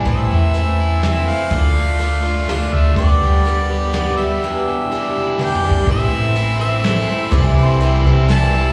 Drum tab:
HH |x--x--x--|x--x--x--|x--x--x--|---------|
SD |------o--|------o--|------o--|---------|
T1 |---------|---------|---------|------o--|
T2 |---------|---------|---------|-------o-|
BD |o--------|o--------|o--------|--------o|

HH |x--x--x--|x--x--x--|
SD |------o--|------o--|
T1 |---------|---------|
T2 |---------|---------|
BD |o--------|o--------|